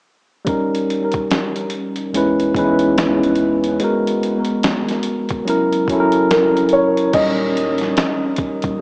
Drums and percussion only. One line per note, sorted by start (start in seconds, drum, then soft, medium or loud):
0.47 kick loud
0.47 closed hi-hat medium
0.75 closed hi-hat soft
0.90 closed hi-hat medium
1.12 kick medium
1.12 closed hi-hat soft
1.31 snare medium
1.31 closed hi-hat medium
1.56 closed hi-hat soft
1.70 closed hi-hat medium
1.96 closed hi-hat soft
2.14 closed hi-hat medium
2.40 closed hi-hat soft
2.55 kick medium
2.55 closed hi-hat medium
2.79 closed hi-hat soft
2.98 snare loud
2.98 closed hi-hat medium
3.23 closed hi-hat soft
3.35 closed hi-hat medium
3.64 closed hi-hat soft
3.80 closed hi-hat medium
4.07 closed hi-hat medium
4.23 closed hi-hat medium
4.45 closed hi-hat soft
4.63 snare loud
4.63 closed hi-hat medium
4.89 snare soft
4.89 closed hi-hat soft
5.03 closed hi-hat medium
5.29 kick medium
5.29 closed hi-hat soft
5.48 closed hi-hat medium
5.73 closed hi-hat soft
5.88 kick medium
5.88 closed hi-hat medium
6.12 closed hi-hat soft
6.31 snare loud
6.31 closed hi-hat medium
6.57 closed hi-hat soft
6.69 closed hi-hat soft
6.97 closed hi-hat soft
7.13 kick loud
7.13 closed hi-hat medium
7.13 crash medium
7.57 closed hi-hat medium
7.78 snare soft
7.78 closed hi-hat soft
7.97 snare loud
7.97 closed hi-hat medium
8.36 kick medium
8.36 closed hi-hat medium
8.62 kick medium
8.62 closed hi-hat soft